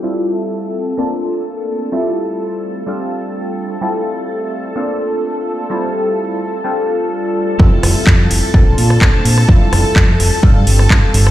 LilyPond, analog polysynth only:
\new Staff \with { instrumentName = "Analog polysynth" } { \time 4/4 \key f \major \tempo 4 = 127 <g c' e' f' a'>2 <bes c' d' f' a'>2 | <g c' e' f' a'>2 <g c' d' f' a'>2 | <g c' e' f' a'>2 <bes c' d' f' a'>2 | <g c' e' f' a'>2 <g c' d' f' a'>2 |
<g c' e' f' a'>2 <bes c' d' f' a'>2 | <g c' e' f' a'>2 <g c' d' f' a'>2 | }